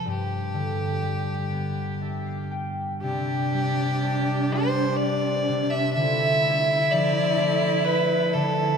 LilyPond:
<<
  \new Staff \with { instrumentName = "Fiddle" } { \time 3/4 \key c \major \tempo 4 = 62 g'2~ g'8 r8 | g'4. c''8 d''8. e''16 | e''4 d''4 b'8 a'8 | }
  \new Staff \with { instrumentName = "Cello" } { \time 3/4 \key c \major r2. | d'2. | e'2. | }
  \new Staff \with { instrumentName = "Harmonium" } { \time 3/4 \key c \major r2. | d'2.~ | d'2. | }
  \new Staff \with { instrumentName = "Harmonium" } { \clef bass \time 3/4 \key c \major r2. | <c g>2. | <f e'>2. | }
  \new Staff \with { instrumentName = "Harp" } { \time 3/4 \key c \major r2 e''16 f''16 g''8 | r2. | r2. | }
  \new Staff \with { instrumentName = "Harp" } { \clef bass \time 3/4 \key c \major g,8 d8 g8 b8 d'4 | c8 g8 d'8 g4 c8 | d8 a8 f8 a4 d8 | }
>>